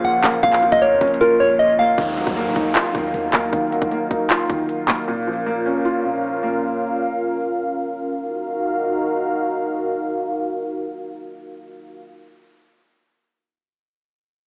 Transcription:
0.00 0.43 A#2 loud
0.00 1.95 C#3 medium
0.00 0.62 F3 medium
0.00 1.95 F3 medium
0.00 0.22 A#3 medium
0.00 1.94 A#3 medium
0.00 0.43 C#4 medium
0.00 0.62 F4 loud
0.00 1.94 F4 medium
0.04 0.23 A#1 loud
0.04 0.20 F#5 medium
0.04 closed hi-hat medium
0.24 0.42 A#1 loud
0.24 0.80 A#3 medium
0.24 kick loud
0.24 clap loud
0.24 closed hi-hat loud
0.43 0.71 A#1 loud
0.43 1.38 A#2 medium
0.43 0.70 F5 medium
0.43 kick loud
0.43 closed hi-hat medium
0.53 clap medium
0.62 1.59 F3 medium
0.62 closed hi-hat medium
0.72 0.93 A#1 loud
0.72 0.80 D#5 medium
0.72 kick loud
0.82 1.77 A#3 medium
0.82 1.18 C#5 medium
0.82 closed hi-hat medium
0.91 1.01 F2 loud
1.01 1.21 A#1 loud
1.01 1.98 C#4 medium
1.01 kick loud
1.01 closed hi-hat soft
1.08 closed hi-hat medium
1.14 closed hi-hat medium
1.21 1.98 F4 loud
1.21 1.36 A#4 medium
1.40 1.98 A#2 medium
1.40 1.55 C#5 medium
1.59 1.75 D#5 medium
1.79 1.98 A#3 medium
1.79 1.94 F5 medium
1.98 2.19 D#2 loud
1.98 2.93 D#3 medium
1.98 5.05 F#3 medium
1.98 5.05 D#4 medium
1.98 5.05 A#4 medium
1.98 5.05 F5 medium
1.98 kick loud
1.98 closed hi-hat medium
1.98 downlifter medium
2.17 2.26 C#2 loud
2.17 3.14 F#3 medium
2.17 closed hi-hat medium
2.27 2.48 D#2 loud
2.27 kick loud
2.37 3.32 A#3 medium
2.37 closed hi-hat medium
2.46 2.56 A#2 loud
2.56 2.75 D#2 loud
2.56 3.53 D#4 medium
2.56 kick medium
2.56 closed hi-hat medium
2.75 3.72 F4 loud
2.75 clap loud
2.75 closed hi-hat medium
2.94 3.13 D#2 loud
2.94 3.51 D#3 medium
2.94 kick medium
2.94 closed hi-hat medium
3.14 3.33 D#2 loud
3.14 closed hi-hat medium
3.33 3.52 D#2 loud
3.33 3.90 A#3 medium
3.33 kick loud
3.33 clap medium
3.33 closed hi-hat medium
3.53 4.48 D#3 medium
3.53 kick loud
3.53 closed hi-hat medium
3.72 4.69 F#3 medium
3.72 closed hi-hat medium
3.82 kick loud
3.92 4.87 A#3 medium
3.92 closed hi-hat medium
4.11 5.08 D#4 medium
4.11 kick medium
4.11 closed hi-hat medium
4.30 5.08 F4 loud
4.30 clap loud
4.30 closed hi-hat medium
4.49 5.08 D#3 medium
4.49 kick medium
4.49 closed hi-hat medium
4.69 closed hi-hat medium
4.88 5.08 A#3 medium
4.88 kick loud
4.88 clap medium
4.88 closed hi-hat medium
5.08 6.03 A#2 loud
5.08 8.14 C#4 medium
5.08 8.14 F4 medium
5.08 8.14 A#4 medium
5.08 8.14 F5 medium
5.27 6.24 F3 medium
5.46 6.42 A#3 medium
5.66 6.62 C#4 medium
5.85 6.82 F4 medium
6.04 7.01 A#2 medium
6.43 7.40 A#3 medium
8.17 12.03 D#4 medium
8.17 12.03 F#4 medium
8.17 12.03 A#4 medium
8.17 12.03 F5 medium

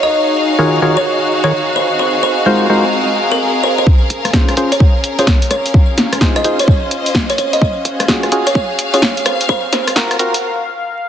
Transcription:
0.00 2.63 D#4 medium
0.00 3.87 F#4 medium
0.00 1.76 C#5 medium
0.00 3.88 D#5 medium
0.00 0.50 D#5 medium
0.00 6.27 F5 medium
0.17 6.27 G#4 medium
0.59 0.80 D#3 medium
0.59 0.80 F4 medium
0.59 0.80 F#4 medium
0.59 0.80 G#4 medium
0.59 0.80 A#4 medium
0.59 0.80 C#5 loud
0.82 0.97 D#3 medium
0.82 0.97 F4 medium
0.82 0.97 F#4 medium
0.82 0.97 G#4 medium
0.82 0.97 A#4 medium
0.82 0.97 C#5 loud
0.97 1.05 C#5 medium
1.44 1.53 D#3 medium
1.44 1.53 F4 medium
1.44 1.53 F#4 medium
1.44 1.53 G#4 medium
1.44 1.53 A#4 medium
1.44 1.53 C#5 medium
1.44 1.52 C#5 medium
1.76 3.87 C4 medium
1.76 1.90 C5 medium
1.99 2.13 C5 medium
2.23 2.37 C5 medium
2.46 2.67 G#3 medium
2.46 2.67 D#4 medium
2.46 2.67 F4 medium
2.46 2.67 F#4 medium
2.46 2.67 A#4 medium
2.46 2.67 C5 loud
2.69 2.85 G#3 medium
2.69 2.85 D#4 medium
2.69 2.85 F4 medium
2.69 2.85 F#4 medium
2.69 2.85 A#4 medium
2.69 6.20 A#4 medium
2.69 2.85 C5 medium
3.32 3.39 A#4 medium
3.63 3.73 C5 medium
3.78 3.84 C5 medium
3.87 4.06 A#1 loud
3.87 9.26 C#4 medium
3.87 11.09 F5 medium
3.87 kick loud
4.10 4.42 A#1 medium
4.10 closed hi-hat loud
4.25 cross-stick medium
4.25 closed hi-hat medium
4.33 4.55 C#4 medium
4.33 4.55 F4 medium
4.33 4.55 G#4 medium
4.33 4.55 C5 loud
4.33 kick loud
4.33 snare loud
4.49 4.55 A#1 medium
4.49 cross-stick medium
4.49 closed hi-hat soft
4.57 5.24 A#1 loud
4.57 4.72 C#4 medium
4.57 4.72 F4 medium
4.57 4.72 G#4 medium
4.57 4.72 C5 loud
4.57 closed hi-hat loud
4.72 4.80 C#5 medium
4.72 closed hi-hat medium
4.80 kick loud
5.04 closed hi-hat loud
5.19 5.28 C#4 medium
5.19 5.28 F4 medium
5.19 5.28 G#4 medium
5.19 5.28 C5 medium
5.19 5.27 C#5 medium
5.19 closed hi-hat medium
5.27 kick loud
5.27 snare loud
5.42 closed hi-hat soft
5.51 5.70 C#2 medium
5.51 5.65 C#5 medium
5.51 cross-stick medium
5.51 closed hi-hat loud
5.66 closed hi-hat medium
5.74 5.93 C#2 loud
5.74 kick loud
5.90 7.38 F4 medium
5.98 6.30 C#2 medium
5.98 snare medium
5.98 closed hi-hat loud
6.13 cross-stick medium
6.13 closed hi-hat medium
6.21 6.42 D#4 medium
6.21 6.42 F4 medium
6.21 6.42 G#4 medium
6.21 6.42 C5 medium
6.21 8.14 C5 medium
6.21 kick loud
6.21 snare loud
6.36 6.42 C#2 medium
6.36 6.41 D#5 medium
6.36 8.14 D#5 medium
6.36 cross-stick medium
6.36 closed hi-hat soft
6.44 7.11 C#2 loud
6.44 6.60 D#4 medium
6.44 6.60 F4 medium
6.44 6.59 G#4 medium
6.44 6.60 C5 medium
6.44 6.54 D#5 medium
6.44 closed hi-hat loud
6.59 6.67 C#5 medium
6.59 closed hi-hat medium
6.68 kick loud
6.91 closed hi-hat loud
7.06 closed hi-hat medium
7.15 kick loud
7.15 snare loud
7.30 7.35 C#5 medium
7.30 closed hi-hat soft
7.38 7.57 D#2 medium
7.38 7.48 C#5 medium
7.38 closed hi-hat loud
7.53 8.00 D#5 medium
7.53 closed hi-hat medium
7.61 7.81 D#2 loud
7.61 kick loud
7.67 10.43 F#4 medium
7.85 8.17 D#2 medium
7.85 10.13 G#4 medium
7.85 closed hi-hat loud
8.00 cross-stick medium
8.00 closed hi-hat medium
8.08 8.30 C#4 medium
8.08 8.30 F4 medium
8.08 8.30 F#4 medium
8.08 8.30 G#4 loud
8.08 kick loud
8.08 snare loud
8.23 8.30 D#2 medium
8.23 10.43 F5 medium
8.23 cross-stick medium
8.23 closed hi-hat soft
8.32 8.99 D#2 loud
8.32 8.47 C#4 medium
8.32 8.47 F4 medium
8.32 8.47 F#4 medium
8.32 8.47 G#4 loud
8.32 closed hi-hat loud
8.47 8.55 C#5 medium
8.47 closed hi-hat medium
8.55 kick loud
8.79 closed hi-hat loud
8.94 9.02 C#4 medium
8.94 9.03 F4 medium
8.94 9.02 F#4 medium
8.94 9.02 G#4 medium
8.94 9.02 C#5 medium
8.94 closed hi-hat medium
9.02 kick loud
9.02 snare loud
9.17 closed hi-hat soft
9.26 9.45 G#1 medium
9.26 10.43 C4 medium
9.26 9.40 C5 medium
9.26 cross-stick medium
9.26 closed hi-hat loud
9.41 closed hi-hat medium
9.49 9.63 C5 medium
9.49 kick loud
9.73 10.05 G#1 medium
9.73 9.87 C5 medium
9.73 snare medium
9.73 closed hi-hat loud
9.87 cross-stick medium
9.87 closed hi-hat medium
9.96 10.17 C4 medium
9.96 10.17 F4 medium
9.96 10.17 F#4 medium
9.96 10.17 A#4 loud
9.96 kick loud
9.96 snare loud
10.04 10.43 A#4 medium
10.11 10.17 G#1 medium
10.11 cross-stick medium
10.11 closed hi-hat soft
10.19 10.43 G#1 loud
10.19 10.35 C4 medium
10.19 10.35 F4 medium
10.19 10.34 F#4 medium
10.19 10.34 A#4 medium
10.19 closed hi-hat loud
10.34 closed hi-hat medium

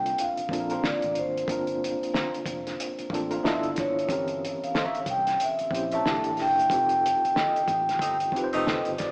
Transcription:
0.00 0.14 C2 medium
0.00 0.49 A#3 loud
0.00 0.51 C4 medium
0.00 0.51 D4 medium
0.00 0.53 F4 medium
0.00 0.54 A4 loud
0.00 0.21 G5 medium
0.06 closed hi-hat soft
0.18 0.86 F5 medium
0.18 closed hi-hat medium
0.37 muted fingered electric bass stroke soft
0.37 closed hi-hat soft
0.49 0.78 A#1 medium
0.49 1.39 A#3 medium
0.49 1.40 C4 medium
0.49 1.40 D4 medium
0.49 1.41 F4 medium
0.49 kick medium
0.53 0.60 A4 medium
0.53 closed hi-hat medium
0.60 1.44 A#4 medium
0.70 0.84 C4 soft
0.70 0.84 F4 medium
0.70 0.84 A#4 medium
0.70 closed hi-hat soft
0.84 1.18 D5 medium
0.84 snare loud
1.02 1.15 A1 medium
1.02 closed hi-hat soft
1.15 1.45 G#1 medium
1.15 3.09 C5 medium
1.15 closed hi-hat medium
1.37 closed hi-hat soft
1.48 1.94 G1 loud
1.48 2.67 A#3 medium
1.48 2.68 C4 medium
1.48 2.68 D4 medium
1.48 2.69 F4 medium
1.48 kick loud
1.48 closed hi-hat medium
1.52 2.69 A#4 medium
1.67 closed hi-hat soft
1.84 closed hi-hat medium
2.02 muted fingered electric bass stroke medium
2.02 closed hi-hat soft
2.14 2.37 C4 medium
2.14 2.37 F4 medium
2.14 2.38 A#4 medium
2.14 snare loud
2.34 closed hi-hat soft
2.46 2.75 F1 medium
2.46 kick medium
2.46 closed hi-hat medium
2.67 snare soft
2.67 closed hi-hat soft
2.80 closed hi-hat medium
2.99 muted fingered electric bass stroke soft
2.99 closed hi-hat medium
3.10 3.39 A1 medium
3.10 3.44 A#3 medium
3.10 3.44 C4 medium
3.10 3.43 D4 medium
3.10 3.45 F4 medium
3.10 kick medium
3.14 3.46 A4 loud
3.14 closed hi-hat medium
3.31 3.45 C4 medium
3.31 3.43 F4 medium
3.31 3.44 A#4 medium
3.31 closed hi-hat soft
3.43 3.73 G1 loud
3.43 4.03 B3 medium
3.43 4.03 D4 medium
3.43 4.04 E4 medium
3.43 3.67 F4 medium
3.43 4.04 F4 medium
3.43 4.05 A4 loud
3.43 3.68 B4 medium
3.43 3.68 E5 loud
3.43 snare loud
3.63 closed hi-hat soft
3.76 4.06 G#1 loud
3.76 4.65 C#5 medium
3.76 kick loud
3.76 snare soft
3.76 closed hi-hat medium
3.99 closed hi-hat soft
4.08 4.55 G1 loud
4.08 5.29 E3 medium
4.08 5.28 C4 medium
4.08 5.28 C#4 medium
4.08 5.29 G4 medium
4.08 kick loud
4.08 closed hi-hat medium
4.12 5.30 A#4 medium
4.28 closed hi-hat soft
4.45 closed hi-hat medium
4.63 5.09 F5 loud
4.63 muted fingered electric bass stroke soft
4.63 closed hi-hat soft
4.75 4.98 A#4 medium
4.75 4.98 C#5 medium
4.75 4.98 E5 medium
4.75 snare loud
4.95 closed hi-hat soft
5.06 5.35 C2 medium
5.06 5.42 G5 loud
5.06 kick medium
5.06 closed hi-hat medium
5.27 snare soft
5.27 closed hi-hat soft
5.40 5.95 E5 medium
5.40 closed hi-hat medium
5.59 muted fingered electric bass stroke soft
5.59 closed hi-hat soft
5.71 6.00 A#1 medium
5.71 6.04 C4 medium
5.71 6.05 C#4 medium
5.71 6.05 E4 medium
5.71 6.06 G4 medium
5.71 kick medium
5.71 closed hi-hat medium
5.76 6.06 C5 medium
5.92 6.06 A#4 medium
5.92 6.06 C#5 medium
5.92 6.05 E5 medium
5.92 6.36 A5 loud
5.92 closed hi-hat soft
6.05 6.23 C2 loud
6.05 6.64 A#3 medium
6.05 6.28 A#3 medium
6.05 6.65 D4 medium
6.05 6.29 E4 loud
6.05 6.65 E4 medium
6.05 6.66 G4 medium
6.05 6.29 A4 loud
6.05 6.66 A4 medium
6.05 snare loud
6.24 6.37 A1 loud
6.24 closed hi-hat soft
6.37 6.67 F#1 loud
6.37 snare soft
6.37 open hi-hat soft
6.41 8.31 G5 loud
6.59 closed hi-hat soft
6.70 7.16 F1 loud
6.70 7.89 C4 medium
6.70 7.89 D#4 medium
6.70 7.90 F4 medium
6.70 7.90 G4 medium
6.70 kick loud
6.70 closed hi-hat medium
6.74 7.91 A4 medium
6.89 closed hi-hat soft
7.06 closed hi-hat medium
7.25 muted fingered electric bass stroke medium
7.25 closed hi-hat soft
7.36 7.59 G4 medium
7.36 7.59 A4 medium
7.36 7.60 D#5 medium
7.36 snare loud
7.56 closed hi-hat soft
7.68 7.97 A1 medium
7.68 kick medium
7.68 closed hi-hat medium
7.89 snare soft
7.89 closed hi-hat medium
7.99 8.29 G1 loud
7.99 8.17 A3 medium
7.99 8.17 C4 medium
7.99 8.17 D#4 medium
7.99 kick medium
7.99 closed hi-hat medium
8.20 closed hi-hat medium
8.32 9.12 C4 medium
8.32 9.12 D#4 medium
8.32 9.12 F4 medium
8.32 kick loud
8.36 9.12 G4 medium
8.36 8.43 B4 medium
8.36 closed hi-hat medium
8.44 9.12 C5 loud
8.53 8.82 F1 medium
8.53 8.74 A3 medium
8.53 8.74 C4 medium
8.53 8.74 D#4 medium
8.53 8.65 G4 soft
8.53 8.66 A4 medium
8.53 8.66 D#5 medium
8.53 closed hi-hat soft
8.66 8.89 G4 medium
8.66 8.90 A4 medium
8.66 8.90 D#5 loud
8.66 snare loud
8.85 8.98 G1 medium
8.85 closed hi-hat soft
8.98 9.12 G#1 medium
8.98 9.12 D5 loud
8.98 kick medium
8.98 snare soft
8.98 closed hi-hat medium

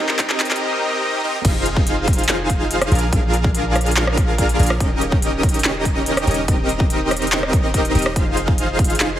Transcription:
0.00 1.21 C4 medium
0.00 1.21 D#4 medium
0.00 1.21 G4 medium
0.00 1.21 A#4 medium
0.00 1.21 D#5 medium
0.09 clap medium
0.19 kick loud
0.19 clap medium
0.19 closed hi-hat medium
0.30 clap medium
0.40 clap loud
0.40 closed hi-hat soft
0.45 closed hi-hat medium
0.51 clap medium
0.51 closed hi-hat soft
0.56 closed hi-hat medium
1.24 1.36 C4 medium
1.24 1.36 D#4 medium
1.24 1.36 G4 medium
1.24 1.36 A#4 medium
1.24 1.36 D#5 medium
1.45 2.90 F1 medium
1.45 2.89 D#4 medium
1.45 2.89 F4 medium
1.45 2.89 G#4 medium
1.45 2.89 C5 medium
1.45 2.89 F5 medium
1.45 kick loud
1.45 closed hi-hat medium
1.45 crash loud
1.66 closed hi-hat medium
1.77 kick loud
1.87 closed hi-hat medium
2.08 kick loud
2.08 closed hi-hat medium
2.13 closed hi-hat medium
2.19 closed hi-hat medium
2.24 closed hi-hat medium
2.29 clap loud
2.29 closed hi-hat medium
2.50 kick medium
2.50 closed hi-hat medium
2.71 closed hi-hat medium
2.81 cross-stick medium
2.81 closed hi-hat medium
2.92 3.11 A#1 loud
2.92 3.04 D4 medium
2.92 3.04 F4 medium
2.92 3.04 G#4 medium
2.92 3.04 A#4 medium
2.92 3.04 F5 medium
2.92 closed hi-hat medium
2.95 closed hi-hat medium
2.99 closed hi-hat medium
3.12 4.57 A#1 loud
3.12 4.57 D4 medium
3.12 4.57 F4 medium
3.12 4.57 G#4 medium
3.12 4.57 A#4 medium
3.12 4.57 F5 medium
3.12 kick loud
3.12 closed hi-hat medium
3.34 closed hi-hat medium
3.44 kick loud
3.55 closed hi-hat medium
3.76 cross-stick medium
3.76 closed hi-hat soft
3.81 closed hi-hat medium
3.86 closed hi-hat medium
3.91 closed hi-hat medium
3.96 clap loud
3.96 closed hi-hat medium
4.07 cross-stick medium
4.17 kick loud
4.17 closed hi-hat medium
4.38 kick medium
4.38 closed hi-hat medium
4.49 closed hi-hat medium
4.59 4.78 A#1 loud
4.59 4.72 D4 medium
4.59 4.72 F4 medium
4.59 4.72 G#4 medium
4.59 4.72 A#4 medium
4.59 4.72 F5 medium
4.59 closed hi-hat medium
4.63 closed hi-hat medium
4.66 cross-stick medium
4.66 closed hi-hat medium
4.80 6.25 D#1 loud
4.80 6.25 C#4 medium
4.80 6.25 D#4 medium
4.80 6.25 G4 medium
4.80 6.25 A#4 medium
4.80 6.25 D#5 medium
4.80 kick loud
4.80 closed hi-hat medium
5.01 closed hi-hat medium
5.12 kick loud
5.22 closed hi-hat medium
5.43 kick loud
5.43 closed hi-hat soft
5.49 closed hi-hat medium
5.54 closed hi-hat soft
5.59 closed hi-hat medium
5.64 clap loud
5.85 kick medium
5.85 closed hi-hat medium
6.06 closed hi-hat medium
6.17 cross-stick medium
6.17 closed hi-hat medium
6.27 6.46 D#1 loud
6.27 6.40 C#4 medium
6.27 6.40 D#4 medium
6.27 6.40 G4 medium
6.27 6.40 A#4 medium
6.27 6.40 D#5 medium
6.27 closed hi-hat soft
6.31 closed hi-hat medium
6.34 closed hi-hat medium
6.48 7.93 D#1 loud
6.48 7.93 C4 medium
6.48 7.93 D#4 medium
6.48 7.93 G4 medium
6.48 7.93 A#4 medium
6.48 7.93 D#5 medium
6.48 kick loud
6.48 closed hi-hat medium
6.69 closed hi-hat medium
6.80 kick loud
6.90 closed hi-hat medium
7.11 cross-stick medium
7.11 closed hi-hat soft
7.17 closed hi-hat medium
7.22 closed hi-hat soft
7.27 closed hi-hat medium
7.32 clap loud
7.32 closed hi-hat medium
7.43 cross-stick medium
7.53 kick loud
7.53 closed hi-hat medium
7.74 kick medium
7.74 closed hi-hat medium
7.85 closed hi-hat medium
7.95 8.18 D#1 loud
7.95 8.08 C4 medium
7.95 8.08 D#4 medium
7.95 8.08 G4 medium
7.95 8.08 A#4 medium
7.95 8.08 D#5 loud
7.95 closed hi-hat soft
7.99 closed hi-hat medium
8.02 cross-stick medium
8.02 closed hi-hat medium
8.16 9.19 F1 loud
8.16 9.19 D#4 medium
8.16 9.19 F4 medium
8.16 9.19 G#4 medium
8.16 9.19 C5 medium
8.16 9.19 F5 medium
8.16 kick loud
8.16 closed hi-hat medium
8.37 closed hi-hat medium
8.48 kick loud
8.58 closed hi-hat medium
8.79 kick loud
8.79 closed hi-hat soft
8.84 closed hi-hat medium
8.90 closed hi-hat soft
8.95 closed hi-hat medium
9.00 clap loud
9.00 closed hi-hat medium

